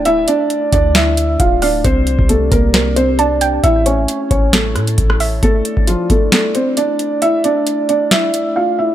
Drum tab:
HH |x-x-x-x-x-x-x-o-|x-x-x-x-x-x-x-x-|x-x-x-x-x-xxx-o-|x-x-x-x-x-x-x-x-|
SD |--------o-------|--------o-------|--------o-r--r--|--------o-------|
BD |------o-----o---|o--o--o---------|------o-----o---|o--o--o---------|

HH |x-x-x-x-x-x-----|
SD |--------o-------|
BD |----------------|